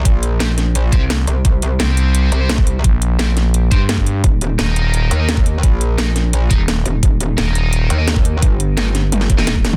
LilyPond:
<<
  \new Staff \with { instrumentName = "Distorted electric guitar" } { \time 4/4 \key ees \lydian \tempo 4 = 172 r4 <c' g' c''>16 r4 r16 <c' g' c''>16 r4 r16 | r4 <c' g' c''>4.~ <c' g' c''>16 <c' g' c''>16 r4 | r4 <c' g' c''>16 r4 r16 <c' g' c''>16 r4 r16 | r4 <ees' bes' ees''>4.~ <ees' bes' ees''>16 <ees' bes' ees''>16 r4 |
r4 <ees' bes' ees''>16 r4 r16 <ees' bes' ees''>16 r4 r16 | r4 <ees' bes' ees''>4.~ <ees' bes' ees''>16 <ees' bes' ees''>16 r4 | r4 <ees' bes' ees''>16 r4. <ees' bes' ees''>16 r4 | }
  \new Staff \with { instrumentName = "FM bass" } { \clef bass \time 4/4 \key ees \lydian r2 r8 c,4 r8 | r4 c,4. r4. | bes,,2~ bes,,8 g,4. | r4 ees,,4. r4. |
r2 r8 ees,,4 r8 | r4 ees,,4. r4. | r1 | }
  \new Staff \with { instrumentName = "Wobble bass" } { \clef bass \time 4/4 \key ees \lydian bes,,2~ bes,,8 r4 c,8 | c,4 r4. c,4. | r1 | ees,,4 r4. ees,4. |
bes,,2~ bes,,8 r4 ees,,8 | ees,,4 r4. ees,4. | g,,2~ g,,8 ees,,4 ees,,8 | }
  \new DrumStaff \with { instrumentName = "Drums" } \drummode { \time 4/4 <hh bd>8 hh8 <hh sn>8 <hh sn>8 hh8 <hh bd>8 <hh sn>8 hh8 | <hh bd>8 hh8 <hh sn>8 hh8 hh8 hh8 <hh sn>16 bd16 hh8 | <hh bd>8 hh8 <hh sn>8 <hh sn>8 hh8 <hh bd>8 <hh sn>16 bd16 hh8 | <hh bd>8 hh8 <hh sn>8 hh8 hh8 hh8 <hh sn>16 bd16 hh8 |
<hh bd>8 hh8 <hh sn>8 <hh sn>8 hh8 <hh bd>8 <hh sn>8 hh8 | <hh bd>8 hh8 <hh sn>8 hh8 hh8 hh8 <hh sn>16 bd16 hh8 | <hh bd>8 hh8 <hh sn>8 <hh sn>8 <hh tommh>16 sn16 <hh bd>16 sn16 <hh sn>16 bd16 <hh sn>16 toml16 | }
>>